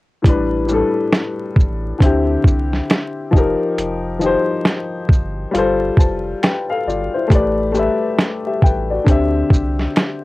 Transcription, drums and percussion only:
0.24 kick, closed hi-hat
0.68 shaker
1.12 snare, closed hi-hat
1.56 kick, shaker
2.01 kick, closed hi-hat
2.44 kick, shaker
2.73 snare
2.90 snare, closed hi-hat
3.33 kick, shaker
3.78 closed hi-hat
4.21 shaker
4.65 snare, closed hi-hat
5.09 kick, shaker
5.55 closed hi-hat
5.97 kick, shaker
6.43 snare, closed hi-hat
6.89 shaker
7.30 kick, closed hi-hat
7.75 shaker
8.19 snare, closed hi-hat
8.62 kick, shaker
9.07 kick, closed hi-hat
9.50 kick, shaker
9.79 snare
9.96 snare, closed hi-hat

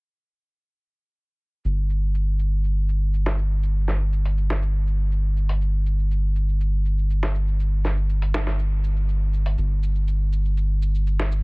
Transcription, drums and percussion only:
1.65 shaker
1.90 shaker
2.02 shaker
2.15 shaker
2.39 shaker
2.52 shaker
2.64 shaker
2.89 shaker
3.01 shaker
3.14 shaker
3.26 snare
3.38 shaker
3.51 shaker
3.63 shaker
3.88 snare, shaker
4.01 shaker
4.13 shaker
4.25 closed hi-hat
4.38 shaker
4.50 snare
4.62 shaker
4.87 shaker
5.00 shaker
5.12 shaker
5.37 shaker
5.49 closed hi-hat, shaker
5.61 shaker
5.86 shaker
5.99 shaker
6.11 shaker
6.36 shaker
6.49 shaker
6.61 shaker
6.85 shaker
6.98 shaker
7.10 shaker
7.23 snare
7.35 shaker
7.47 shaker
7.60 shaker
7.84 snare, shaker
7.97 shaker
8.09 shaker
8.22 closed hi-hat
8.34 snare, shaker
8.47 snare, shaker
8.59 shaker
8.84 shaker
8.96 shaker
9.09 shaker
9.33 shaker
9.46 closed hi-hat, shaker
9.58 shaker
9.83 shaker
9.96 shaker
10.08 shaker
10.32 shaker
10.45 shaker
10.57 shaker
10.82 shaker
10.95 shaker
11.07 shaker
11.20 snare
11.32 shaker

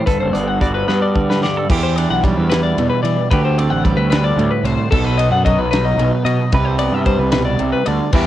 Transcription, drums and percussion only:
0.07 kick, closed hi-hat
0.35 closed hi-hat
0.61 kick, closed hi-hat
0.89 snare
1.16 kick
1.31 snare
1.44 snare
1.70 kick, crash
1.98 ride
2.24 kick, ride
2.52 snare, ride
2.78 ride
3.05 ride
3.31 kick, ride
3.59 ride
3.85 kick, ride
4.12 snare, ride
4.39 ride
4.65 ride
4.92 kick, crash
5.19 ride
5.46 kick, ride
5.73 snare, ride
5.99 ride
6.26 ride
6.52 kick, ride
6.79 ride
7.06 kick, ride
7.32 snare, ride
7.59 ride
7.86 ride
8.13 kick, crash

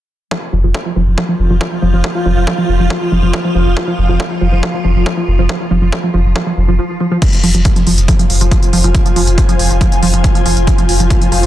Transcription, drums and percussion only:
0.31 kick
0.74 kick
1.18 kick
1.61 kick
2.04 kick
2.47 kick
2.90 kick
3.33 kick
3.77 kick
4.20 kick
4.63 kick
5.06 kick
5.49 kick
5.92 kick
6.36 kick
7.22 kick, closed hi-hat, crash
7.33 closed hi-hat
7.43 open hi-hat
7.55 closed hi-hat
7.65 kick, closed hi-hat
7.76 closed hi-hat
7.87 open hi-hat
7.98 closed hi-hat
8.08 kick, closed hi-hat
8.19 closed hi-hat
8.30 open hi-hat
8.41 closed hi-hat
8.51 kick, closed hi-hat
8.63 closed hi-hat
8.73 open hi-hat
8.84 closed hi-hat
8.95 kick, closed hi-hat
9.06 closed hi-hat
9.16 open hi-hat
9.27 closed hi-hat
9.38 kick, closed hi-hat
9.49 closed hi-hat
9.59 open hi-hat
9.70 closed hi-hat
9.81 kick, closed hi-hat
9.92 closed hi-hat
10.03 open hi-hat
10.14 closed hi-hat
10.24 kick, closed hi-hat
10.35 closed hi-hat
10.46 open hi-hat
10.57 closed hi-hat
10.67 kick, closed hi-hat
10.78 closed hi-hat
10.89 open hi-hat
11.00 closed hi-hat
11.10 kick, closed hi-hat
11.21 closed hi-hat
11.32 open hi-hat
11.43 closed hi-hat

